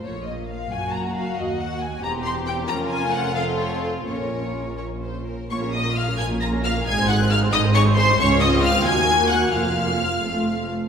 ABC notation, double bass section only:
X:1
M:6/8
L:1/8
Q:3/8=89
K:Bbm
V:1 name="Double bass section" clef=bass
B,,,3 G,,,3 | E,,3 =E,,,3 | F,,,6 | B,,,4- B,,, z |
B,,,3 B,,,3 | A,,,3 A,,,3 | D,,3 E,,3 | F,,,3 F,,,2 z |]